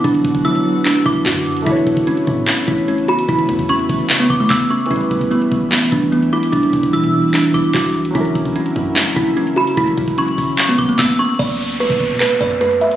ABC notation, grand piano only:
X:1
M:4/4
L:1/8
Q:1/4=148
K:Bm
V:1 name="Grand piano"
[B,,B,Fd]8 | [A,EBc]8- | [A,EBc]8 | [E,G,EB]8- |
[E,G,EB]8 | [F,CE^A]8- | [F,CE^A]8 | z8 |]